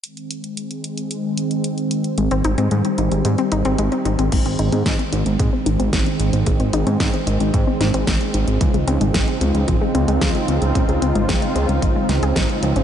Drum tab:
CC |----------------|----------------|x---------------|----------------|
HH |xxxxxxxxx-xxxxxx|xxxxxxxxxxxxxxxx|xxxxxxxxx-xxxxxx|xxxxxxxxx-xxxxxx|
SD |----------------|----------------|----o-------o---|----o-----o-o---|
T2 |----------------|----------------|--------o-------|o---------------|
BD |----------------|----------------|o---o---o---o---|o---o---o---o---|

CC |----------------|----------------|
HH |xxxxxxxxx-xxxxxx|xxxxxxxxx-xxxxxx|
SD |----o-------o---|----o-----o-o---|
T2 |--------o-------|o---------------|
BD |o---o---o---o---|o---o---o---o---|